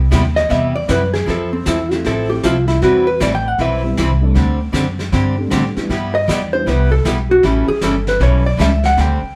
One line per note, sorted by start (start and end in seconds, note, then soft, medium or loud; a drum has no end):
0.00 0.11 C2 medium
0.11 0.49 D#2 medium
0.11 0.23 C3 medium
0.11 0.23 G3 medium
0.11 0.23 B3 medium
0.11 0.23 E4 medium
0.11 0.24 G4 medium
0.11 snare medium
0.11 hi-hat pedal medium
0.36 0.50 D#5 medium
0.36 snare soft
0.49 0.88 E2 medium
0.49 0.72 C3 medium
0.49 0.72 G3 medium
0.49 0.72 B3 medium
0.49 0.72 E4 medium
0.49 0.72 G4 medium
0.49 0.75 E5 loud
0.49 brush sweep soft
0.49 snare soft
0.76 0.89 D5 medium
0.88 1.26 F#2 medium
0.88 1.00 C3 medium
0.88 1.00 G3 medium
0.88 1.00 B3 medium
0.88 1.01 E4 medium
0.88 1.01 G4 medium
0.88 1.13 B4 medium
0.88 snare medium
0.88 hi-hat pedal medium
1.14 1.27 G#4 medium
1.14 snare soft
1.26 1.65 F2 medium
1.26 1.49 F3 medium
1.26 1.49 C4 medium
1.26 1.49 E4 medium
1.26 1.50 A4 medium
1.26 brush sweep soft
1.26 snare soft
1.30 1.53 A4 medium
1.53 1.66 C4 medium
1.65 2.04 E2 medium
1.65 1.77 F3 medium
1.65 1.78 C4 medium
1.65 1.78 E4 medium
1.65 1.92 E4 medium
1.65 1.78 A4 medium
1.65 snare medium
1.65 hi-hat pedal medium
1.91 2.03 F3 medium
1.91 2.03 A3 medium
1.91 2.03 C4 medium
1.91 2.03 E4 medium
1.91 2.04 F4 medium
1.91 2.05 G4 medium
1.91 snare soft
2.04 2.42 A1 loud
2.04 2.27 F3 medium
2.04 2.27 C4 medium
2.04 2.28 E4 medium
2.04 2.28 A4 medium
2.04 2.30 A4 medium
2.04 brush sweep soft
2.04 snare soft
2.29 2.41 F3 medium
2.29 2.41 A3 medium
2.29 2.42 C4 medium
2.29 2.42 E4 medium
2.29 2.43 G4 medium
2.29 2.42 G4 medium
2.43 2.81 C2 medium
2.43 2.55 F3 medium
2.43 2.55 C4 medium
2.43 2.56 E4 medium
2.43 2.67 F4 medium
2.43 2.56 A4 medium
2.43 snare medium
2.43 hi-hat pedal medium
2.68 2.81 E4 medium
2.68 snare soft
2.81 3.19 E2 medium
2.81 3.04 E3 medium
2.81 3.04 G3 medium
2.81 3.05 C4 medium
2.81 3.04 E4 medium
2.81 3.06 F#4 medium
2.81 3.05 B4 medium
2.81 brush sweep soft
2.81 snare soft
3.07 3.20 B4 loud
3.20 3.58 A1 medium
3.20 3.32 E3 medium
3.20 3.32 G3 medium
3.20 3.32 C4 medium
3.20 3.32 E4 medium
3.20 3.33 B4 medium
3.20 3.34 D5 medium
3.20 snare medium
3.20 hi-hat pedal medium
3.35 3.48 G5 loud
3.48 3.59 F#5 loud
3.58 3.96 B1 loud
3.58 3.81 E3 medium
3.58 3.81 G3 soft
3.58 3.81 C4 medium
3.58 3.82 E4 medium
3.58 3.82 B4 medium
3.58 4.33 E5 medium
3.58 brush sweep soft
3.58 snare soft
3.83 3.96 G3 medium
3.83 3.96 B3 medium
3.83 3.96 C4 medium
3.83 3.96 E4 medium
3.83 3.96 G4 medium
3.97 4.35 C2 loud
3.97 4.09 E3 medium
3.97 4.10 G3 medium
3.97 4.10 C4 medium
3.97 4.10 E4 medium
3.97 4.10 B4 medium
3.97 snare medium
3.97 hi-hat pedal medium
4.21 4.34 G3 medium
4.21 4.34 A3 medium
4.21 4.34 C4 medium
4.21 4.34 D4 medium
4.21 4.34 A4 medium
4.34 4.73 D2 medium
4.34 4.57 D3 medium
4.34 4.58 G3 medium
4.34 4.58 C4 medium
4.34 4.58 D4 medium
4.34 4.58 G4 medium
4.34 brush sweep medium
4.34 snare soft
4.72 5.11 F#2 medium
4.72 4.85 D3 medium
4.72 4.85 G3 medium
4.72 4.85 C4 medium
4.72 4.86 D4 medium
4.72 4.85 G4 medium
4.72 snare medium
4.72 hi-hat pedal medium
4.99 snare soft
5.12 5.50 G2 medium
5.12 5.35 D3 medium
5.12 5.35 G3 medium
5.12 5.35 C4 medium
5.12 5.35 D4 medium
5.12 5.35 G4 medium
5.12 brush sweep soft
5.12 snare soft
5.38 5.74 G3 medium
5.38 5.74 A3 medium
5.38 5.74 C4 medium
5.38 5.74 D4 medium
5.38 5.74 G4 medium
5.50 5.75 A2 medium
5.50 5.63 D3 medium
5.50 5.63 G3 medium
5.50 5.63 C4 medium
5.50 5.63 D4 medium
5.50 5.63 G4 medium
5.50 snare medium
5.50 hi-hat pedal medium
5.75 5.88 G3 medium
5.75 5.88 B3 medium
5.75 5.88 D4 medium
5.75 5.88 E4 medium
5.75 5.89 G4 medium
5.75 muted upright bass stroke soft
5.75 snare soft
5.89 6.27 G2 medium
5.89 6.12 G3 medium
5.89 6.12 B3 medium
5.89 6.12 E4 medium
5.89 6.12 G4 medium
5.89 brush sweep soft
5.89 snare soft
6.15 6.29 D#5 loud
6.28 6.66 E2 medium
6.28 6.40 G3 medium
6.28 6.40 B3 medium
6.28 6.40 E4 medium
6.28 6.40 G4 medium
6.28 6.53 D5 medium
6.28 snare medium
6.28 hi-hat pedal medium
6.53 6.65 G3 medium
6.53 6.65 B3 medium
6.53 6.66 D4 medium
6.53 6.65 E4 medium
6.53 6.66 G4 medium
6.53 6.68 C5 medium
6.66 7.04 C2 medium
6.66 6.88 G3 medium
6.66 6.89 B3 medium
6.66 6.89 E4 medium
6.66 6.89 G4 medium
6.66 6.91 B4 medium
6.66 brush sweep soft
6.66 snare soft
6.92 7.07 A4 medium
7.05 7.42 B1 medium
7.05 7.17 G3 medium
7.05 7.17 B3 medium
7.05 7.17 E4 medium
7.05 7.17 G4 medium
7.05 7.30 G4 medium
7.05 snare medium
7.05 hi-hat pedal medium
7.31 7.45 F#4 loud
7.43 7.67 A1 medium
7.43 7.65 E3 medium
7.43 7.65 G3 medium
7.43 7.66 C#4 medium
7.43 7.66 E4 medium
7.43 7.68 G4 medium
7.43 7.66 A4 medium
7.43 brush sweep soft
7.43 snare soft
7.68 7.81 G#4 loud
7.68 muted upright bass stroke soft
7.81 8.19 G1 medium
7.81 7.93 E3 medium
7.81 7.94 G3 medium
7.81 7.94 C#4 medium
7.81 7.94 E4 medium
7.81 7.94 A4 medium
7.81 8.07 A4 medium
7.81 snare medium
7.81 hi-hat pedal medium
8.07 8.21 B4 medium
8.07 snare soft
8.20 8.57 B1 medium
8.20 8.42 E3 medium
8.20 8.42 G3 medium
8.20 8.42 C#4 medium
8.20 8.43 E4 medium
8.20 8.43 A4 medium
8.20 8.46 C#5 medium
8.20 brush sweep medium
8.20 snare soft
8.46 8.59 D5 medium
8.57 8.96 C#2 loud
8.57 8.70 E3 medium
8.57 8.70 G3 medium
8.57 8.70 C#4 medium
8.57 8.70 E4 medium
8.57 8.71 A4 medium
8.57 snare medium
8.57 hi-hat pedal medium
8.62 8.84 E5 medium
8.84 8.98 F#5 loud
8.84 snare soft
8.97 9.20 D2 medium
8.97 9.19 D3 medium
8.97 9.19 G3 medium
8.97 9.19 C4 medium
8.97 9.20 D4 medium
8.97 9.20 G4 medium
8.97 9.35 G5 medium
8.97 brush sweep soft
8.97 snare soft
9.23 muted upright bass stroke soft